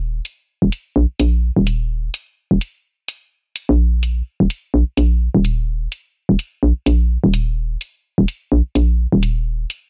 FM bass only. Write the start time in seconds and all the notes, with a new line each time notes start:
Already playing: D#1
0.62 D#1
0.96 A#1
1.20 A#1
1.56 D#1
2.51 D#1
3.69 A#1
4.40 D#1
4.74 A#1
4.97 A#1
5.35 D#1
6.29 D#1
6.63 A#1
6.86 A#1
7.24 D#1
8.18 D#1
8.52 A#1
8.75 A#1
9.12 D#1